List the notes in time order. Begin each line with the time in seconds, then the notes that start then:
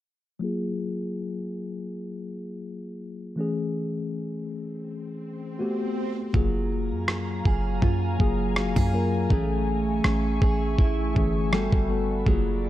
0.39 F#3 A#3 F4, swell
0.44 G#4
3.36 E3 A3 C#4
3.41 G#4
5.59 A3 B3 F#4 G4
6.33 F#1 F#3 A#3 F4 G#4 F5 G#5 A#5, kick
6.91 F#2
7.08 A#3, cross-stick
7.45 F#1 G#4, kick
7.82 F#2 F4, kick
8.18 F#1 F#3 A#3 F4 G#4, kick
8.56 F#4, cross-stick
8.76 F#2 G#4, kick
8.93 F#3 A#3 F4 A#4
9.30 A1 E3 A3 C#4 G#4 E5 C#6, kick
10.04 A1 C#4, cross-stick
10.42 A1 G#4, kick
10.78 A1 E4, kick
11.15 G1 E3 A3 C#4 G#4, kick
11.52 G3 B3 F#4 A4 D5, cross-stick
11.72 G1, kick
11.89 G3 B3 F#4 A4
12.26 F#1 F#3 A#3 F4 G#4 F5 A#5, kick